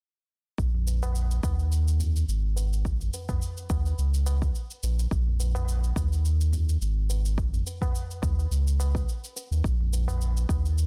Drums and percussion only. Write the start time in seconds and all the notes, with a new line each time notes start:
0.58 kick, shaker
0.74 tabla ge
0.87 tabla tin, shaker
1.03 tabla na, tabla ge, shaker
1.15 shaker
1.31 shaker
1.43 kick, tabla na, shaker
1.59 shaker
1.72 shaker
1.88 shaker
2.00 tabla ge, shaker
2.16 shaker
2.29 shaker
2.56 tabla tin, shaker
2.73 shaker
2.85 kick, shaker
3.00 tabla ge, shaker
3.14 tabla tin, shaker
3.29 kick, tabla na, tabla ge, shaker
3.42 shaker
3.57 shaker
3.70 kick, tabla na, shaker
3.86 tabla na, shaker
3.99 shaker
4.14 shaker
4.26 tabla na, shaker
4.42 kick, tabla tin, shaker
4.55 shaker
4.71 shaker
4.83 tabla tin, shaker
4.99 tabla tin, shaker
5.11 kick, shaker
5.27 tabla ge
5.40 tabla tin, shaker
5.55 tabla na, tabla ge, shaker
5.69 shaker
5.84 shaker
5.96 kick, tabla na, shaker
6.13 shaker
6.25 shaker
6.41 shaker
6.53 tabla ge, shaker
6.69 shaker
6.82 shaker
7.10 tabla tin, shaker
7.25 shaker
7.38 kick, shaker
7.53 tabla ge, shaker
7.67 tabla tin, shaker
7.81 kick, tabla na, tabla ge, shaker
7.95 shaker
8.11 shaker
8.22 kick, tabla na, shaker
8.39 tabla na, shaker
8.52 shaker
8.67 shaker
8.80 tabla na, shaker
8.95 kick, tabla tin, shaker
9.09 shaker
9.24 shaker
9.36 tabla tin, shaker
9.53 tabla tin, shaker
9.64 kick, shaker
9.80 tabla ge
9.93 tabla tin, shaker
10.08 tabla na, tabla ge, shaker
10.21 shaker
10.37 shaker
10.49 kick, tabla na, shaker
10.66 shaker
10.78 shaker